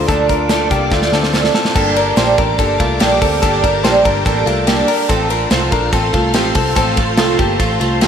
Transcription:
Already playing: synth keys D4 F4 A4, string machine A4 D5 F5 D6
0.07 picked electric bass D2, twelve-string acoustic guitar D3 F3 A3 D4, clean electric guitar A4, kick, closed hi-hat
0.28 twelve-string acoustic guitar F3 A3 D4, clean electric guitar A#4, kick, closed hi-hat
0.49 twelve-string acoustic guitar D3 F3 A3 D4, clean electric guitar A4, snare, closed hi-hat
0.70 picked electric bass C2, twelve-string acoustic guitar F3 A3 D4, clean electric guitar A#3 G4, kick, closed hi-hat
0.90 picked electric bass D2, twelve-string acoustic guitar D3 F3 A3 D4, clean electric guitar F4, kick, snare
1.02 snare
1.12 picked electric bass D2, twelve-string acoustic guitar F3 A3 D4, clean electric guitar C4 A4, snare
1.23 snare
1.33 twelve-string acoustic guitar D3 F3 A3 D4, snare
1.44 snare
1.53 twelve-string acoustic guitar F3 A3 D4, clean electric guitar C4 A4, snare
1.65 snare
1.74 picked electric bass G1, twelve-string acoustic guitar G2 D3 G3 A#3 D4 A4, string machine G4 A#4 A5 D6, kick, crash
1.95 twelve-string acoustic guitar G3 A#3 D4 A4, clean electric guitar A#4, ride
2.16 picked electric bass A#1, twelve-string acoustic guitar G2 D3 G3 A#3 D4 A4, clean electric guitar G4 C5, snare, ride
2.37 picked electric bass A1, twelve-string acoustic guitar G3 A#3 D4 A4, clean electric guitar A#4, kick, ride
2.58 picked electric bass G1, twelve-string acoustic guitar G3 A#3 D4 A4, kick, ride
2.78 picked electric bass C2, twelve-string acoustic guitar G3 A#3 D4 A4, clean electric guitar A3 F4, kick, ride
3.00 picked electric bass A#1, twelve-string acoustic guitar G2 D3 G3 A#3 D4 A4, clean electric guitar G4, snare, ride
3.21 picked electric bass D2, twelve-string acoustic guitar G3 A#3 D4 A4, clean electric guitar C4, kick, open hi-hat, ride
3.42 picked electric bass G1, twelve-string acoustic guitar G2 D3 G3 A#3 D4 A4, kick, hi-hat pedal, ride
3.63 twelve-string acoustic guitar G3 A#3 D4 A4, clean electric guitar A#4, kick, ride
3.84 picked electric bass A#1, twelve-string acoustic guitar G2 D3 G3 A#3 D4 A4, clean electric guitar G4 C5, snare, ride
4.05 picked electric bass G1, twelve-string acoustic guitar G3 A#3 D4 A4, clean electric guitar A#4, kick, ride
4.25 picked electric bass A1, twelve-string acoustic guitar G3 A#3 D4 A4, kick, ride
4.46 picked electric bass C2, twelve-string acoustic guitar G3 A#3 D4 A4, clean electric guitar A3 F4, ride
4.67 twelve-string acoustic guitar G2 D3 G3 A#3 D4 A4, clean electric guitar G4, snare, ride
4.88 twelve-string acoustic guitar G3 A#3 D4 A4, clean electric guitar A#4, open hi-hat, ride
5.09 picked electric bass A1, twelve-string acoustic guitar A2 F3 A3 C4 F4 A4, string machine A4 C5 F5 C6, kick, ride
5.29 twelve-string acoustic guitar A3 C4 F4 A4, clean electric guitar D4 A#4, ride
5.50 picked electric bass C2, twelve-string acoustic guitar A2 F3 A3 C4 F4 A4, clean electric guitar C5, snare, ride
5.71 picked electric bass A#1, twelve-string acoustic guitar A3 C4 F4 A4, clean electric guitar D4 A#4, kick, ride
5.92 picked electric bass A1, twelve-string acoustic guitar A3 C4 F4 A4, kick, ride
6.13 picked electric bass C2, twelve-string acoustic guitar A3 C4 F4 A4, kick, ride
6.34 picked electric bass A1, twelve-string acoustic guitar A2 F3 A3 C4 F4 A4, clean electric guitar G4, snare, ride
6.55 picked electric bass C2, twelve-string acoustic guitar A3 C4 F4 A4, kick, open hi-hat, ride
6.75 picked electric bass A1, twelve-string acoustic guitar A2 F3 A3 C4 F4 A4, kick, hi-hat pedal, ride
6.96 twelve-string acoustic guitar A3 C4 F4 A4, kick, ride
7.17 picked electric bass C2, twelve-string acoustic guitar A2 F3 A3 C4 F4 A4, snare, ride
7.39 picked electric bass G1, twelve-string acoustic guitar A3 C4 F4 A4, clean electric guitar A#3 G4, kick, ride
7.59 picked electric bass A1, twelve-string acoustic guitar A3 C4 F4 A4, kick, ride
7.80 picked electric bass C2, twelve-string acoustic guitar A3 C4 F4 A4, ride
8.01 twelve-string acoustic guitar A2 F3 A3 C4 F4 A4, clean electric guitar G4, snare, ride

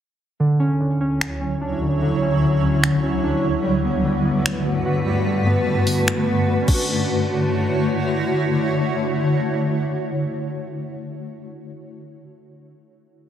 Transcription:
0.39 ambient pad D2 D3 F#3 E4 C#5, synth keys D3
0.60 synth keys C#4
0.80 synth keys D3
1.01 synth keys C#4
1.21 finger snap
1.41 synth keys C#4
1.61 synth keys D4
1.81 synth keys D3
2.02 synth keys D3
2.22 synth keys C#4
2.43 synth keys D3
2.62 synth keys C#4
2.84 finger snap
3.03 synth keys C#4
3.23 synth keys D4
3.44 synth keys D3
3.64 ambient pad G2 A3 F#4 B4, synth keys G3
3.84 synth keys B3
4.05 synth keys G3
4.25 synth keys B3
4.46 finger snap
4.66 synth keys B3
4.86 synth keys F#4
5.06 synth keys G3
5.26 synth keys G3
5.46 synth keys B3
5.67 synth keys G3
5.87 synth keys B3, open hi-hat
6.08 finger snap
6.27 synth keys B3
6.48 synth keys F#4
6.62 synth keys C#4
6.68 ambient pad D3 A3 E4 F#4 C#5, synth keys D4, kick, crash
6.74 synth keys F#4

